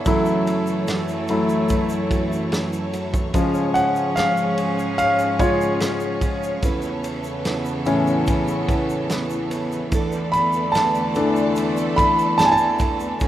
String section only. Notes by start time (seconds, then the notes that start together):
Already playing: A4
0.08 F#3 E4 C#5
3.34 F3 C#4 G#4
6.63 E3 B3 A4
9.92 A4 D5
13.21 A3 F#4 C#5